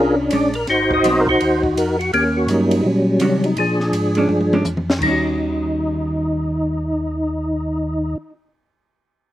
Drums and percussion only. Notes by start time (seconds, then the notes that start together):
0.31 hi-hat pedal, ride
0.54 ride
0.67 snare, ride
0.91 kick
1.04 hi-hat pedal, ride
1.27 kick
1.41 ride
1.63 kick
1.77 hi-hat pedal, ride
2.01 ride
2.13 ride
2.48 hi-hat pedal, ride
2.71 ride
3.20 hi-hat pedal, ride
3.44 ride
3.57 ride
3.80 snare
3.93 hi-hat pedal, ride
4.15 ride
4.29 high tom
4.41 high tom
4.53 high tom
4.65 hi-hat pedal, mid tom
4.77 mid tom
4.90 snare
5.01 kick, crash